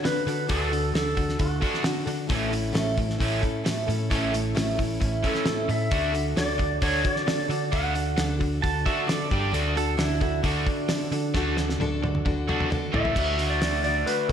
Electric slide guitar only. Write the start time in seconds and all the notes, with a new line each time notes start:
0.05 B4
0.26 B4
0.50 A4
0.94 A4
1.39 F#4
5.27 A4
5.71 E5
6.37 D5
6.83 C#5
7.07 D5
7.73 F#5
12.95 E5
13.50 D5
13.84 D5
14.06 B4
14.29 A4